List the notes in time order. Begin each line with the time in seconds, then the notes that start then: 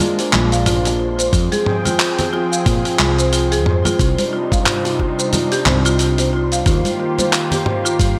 Already playing: G#3 A#3 D4 C5
0.00 F4, high conga, shaker
0.19 C5, open hi-hat, high bongo, shaker
0.33 A#1 F4, clap, high conga, low conga
0.52 F5, open hi-hat, high conga, shaker
0.66 F4, mid tom, open hi-hat, shaker
0.85 F4, open hi-hat, high bongo, shaker
1.00 F4
1.19 C5, open hi-hat, shaker
1.33 F2 F3 C4 F4 G#4 G5, kick, open hi-hat, shaker
1.52 G#4, open hi-hat, high conga, shaker
1.66 C5, mid tom
1.85 F4, open hi-hat, high conga, low conga, shaker
1.99 F4, clap, open hi-hat, shaker
2.19 C5, open hi-hat, high bongo, low conga, shaker
2.33 F4, high bongo
2.52 F5, shaker
2.66 A#2 F4, kick, mid tom, open hi-hat, shaker
2.85 F4, open hi-hat, shaker
2.99 C2 F4, clap, high conga
3.18 C5, open hi-hat, shaker
3.33 F4, open hi-hat, shaker
3.52 G#4, open hi-hat, shaker
3.66 F2 C5, mid tom, high bongo
3.85 F4, open hi-hat, high conga, low conga, shaker
3.99 C2 C3 G3 D4 D#4 F4, kick, open hi-hat, shaker
4.18 C5, open hi-hat, high conga, shaker
4.33 F4
4.52 F5, kick, open hi-hat, high conga, shaker
4.66 F4, clap, mid tom, open hi-hat, shaker
4.85 F4, open hi-hat, high bongo, shaker
4.99 F4, kick, high bongo
5.19 C5, shaker
5.33 F4, open hi-hat, high conga, low conga, shaker
5.52 G4, open hi-hat, high bongo, shaker
5.66 C2 C5, clap, mid tom, high conga, low conga
5.85 F4, open hi-hat, high conga, shaker
5.99 F4, open hi-hat, shaker
6.18 C5, open hi-hat, high bongo, shaker
6.33 F4
6.52 F5, open hi-hat, shaker
6.66 D#2 D#3 A#3 F4 G4, kick, mid tom, open hi-hat, shaker
6.85 F4, open hi-hat, high conga, shaker
7.00 F4
7.18 C5, open hi-hat, high conga, low conga, shaker
7.33 F4, clap, open hi-hat, shaker
7.51 G4, open hi-hat, high bongo, low conga, shaker
7.66 C5, mid tom, high bongo
7.85 F4, shaker
7.99 G2 F4, kick, open hi-hat, shaker